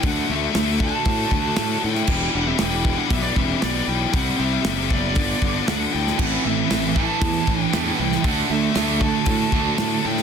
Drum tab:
CC |----------------|x---------------|----------------|x---------------|
HH |o---o---o---o---|----o---o---o---|o---o---o---o---|----o---o---o---|
SD |----o-------o--o|----o-------o---|----o-------o--o|----o-------o--o|
BD |o-----o-o-o-----|o-----o-o-o-----|o-----o-o-o-----|o-----o-o-o-----|

CC |----------------|
HH |o---o---o---o---|
SD |----o-------o--o|
BD |o-----o-o-o-----|